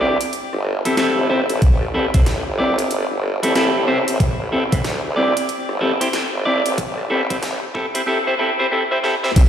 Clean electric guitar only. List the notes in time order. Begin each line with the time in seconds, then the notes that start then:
0.01 C4 E4 G4 D5
0.85 C4 E4 G4 A4
0.97 C4 E4 G4 A4
1.30 C4 E4 G4 C5
1.94 C4 E4 G4 A4
2.14 C4 E4 G4 C5
2.58 C4 E4 G4 D5
3.43 C4 E4 G4 A4
3.55 C4 E4 G4 A4
3.87 C4 E4 G4 C5
4.52 C4 E4 G4 A4
4.72 C4 E4 G4 C5
5.16 C4 E4 G4 D5
5.81 C4 E4 G4 A4
6.01 C4 E4 G4 C5
6.45 C4 E4 G4 D5
7.10 C4 E4 G4 A4
7.30 C4 E4 G4 C5
7.75 C4 E4 G4 A4
7.95 C4 E4 G4 C5
8.06 C4 E4 G4 A4
8.27 C4 E4 G4 C5
8.39 C4 E4 G4 A4
8.59 C4 E4 G4 C5
8.71 C4 E4 G4 A4
8.91 C4 E4 G4 C5
9.04 C4 E4 G4 A4
9.23 C4 E4 G4 C5